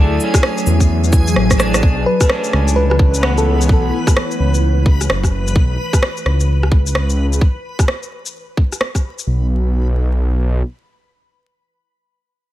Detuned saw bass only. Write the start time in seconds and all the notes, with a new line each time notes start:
Already playing: D2
0.67 E2
1.37 A1
1.83 B1
2.53 C#2
3.69 B1
4.40 C#2
5.10 F#1
5.56 B1
6.25 C#2
9.27 B1